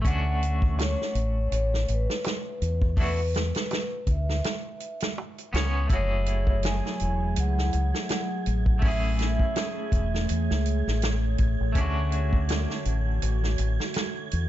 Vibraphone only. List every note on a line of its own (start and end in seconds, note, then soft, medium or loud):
0.07 0.81 F#5 loud
0.82 1.53 C#5 loud
1.54 1.91 C#5 loud
1.92 2.96 B4 medium
3.02 4.06 B4 medium
4.11 5.15 E5 medium
5.93 6.61 C#5 loud
6.66 7.40 G#5 loud
7.40 8.89 F#5 loud
8.85 11.00 E5 medium